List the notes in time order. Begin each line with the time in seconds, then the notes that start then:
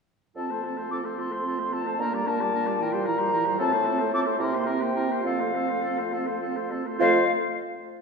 0.36 F2 C4 F4 A4 A5
0.50 A3 A4 C5
0.64 C4 F4 A4
0.77 A3 A4 C5
0.90 C4 F4 A4 D6
1.03 A3 A4 C5
1.17 C4 F4 A4 C6
1.30 A3 A4 C5
1.44 C4 F4 A4
1.58 A3 A4 C5
1.72 C4 F4 A4 A5
1.86 A3 A4 C5
1.99 A#2 A#3 D4 A#4 A#5
2.13 G3 A#3 D5
2.25 A#3 D4 A#4 A5
2.40 G3 A#3 D5
2.53 A#3 D4 A#4
2.67 G3 A#3 D5
2.80 E3 E4 A#4 G5
2.93 G3 G4 C5
3.06 E3 E4 A#4 A#5
3.19 G3 G4 C5
3.33 E3 E4 A#4
3.46 G3 G4 C5
3.59 A2 C4 F4 A4 A5
3.72 A3 A4 C5
3.85 C4 F4 A4
3.99 A3 A4 C5
4.13 C4 F4 A4 D6
4.26 A3 A4 C5
4.39 C3 C4 E4 A#4 C6
4.52 A#3 G4 C5
4.65 C4 E4 A#4 G5
4.79 A#3 G4 C5
4.94 C4 E4 A#4
5.08 A#3 G4
5.12 C5
5.21 F2 C4 F4 F5
5.26 A4
5.37 A3 A4 C5
5.53 C4 F4 A4
5.67 A3 A4 C5
5.82 C4 F4 A4
5.98 A3 A4 C5
6.12 C4 F4 A4
6.26 A3 A4 C5
6.42 C4 F4 A4
6.56 A3 A4 C5
6.71 C4 F4 A4
6.84 A3 A4 C5
6.98 F2 A3 F4 C5 F5